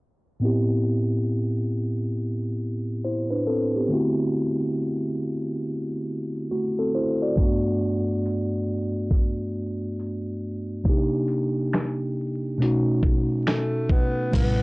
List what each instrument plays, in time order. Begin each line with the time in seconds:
0.40 tine electric piano A2 B3 C4
0.44 tine electric piano E4 G4
3.04 tine electric piano E4 C5
3.31 tine electric piano D4 B4
3.47 tine electric piano C4 A4
3.76 tine electric piano B3 G4
3.89 tine electric piano D3 A3 C4
3.93 tine electric piano E4 F#4
6.51 tine electric piano A3 F#4
6.79 tine electric piano C4 A4
6.95 tine electric piano E4 C5
7.22 tine electric piano F#4 D5
7.36 tine electric piano G2 A3 B3, kick, closed hi-hat
7.40 tine electric piano D4 F#4
8.26 closed hi-hat
9.11 kick, closed hi-hat
10.00 closed hi-hat
10.84 tine electric piano C3 A#3 D4 D#4, kick, closed hi-hat
10.89 tine electric piano G4
11.28 closed hi-hat
11.73 finger snap, snare, closed hi-hat
12.58 tine electric piano B2 A3 C#4
12.62 tine electric piano D#4 F#4, closed hi-hat
13.03 kick
13.47 tenor saxophone A3, finger snap, snare, closed hi-hat
13.89 tenor saxophone B3, kick
14.31 upright bass A1, tine electric piano G3 B4, tenor saxophone B3, kick, closed hi-hat, crash
14.35 tine electric piano C3 E4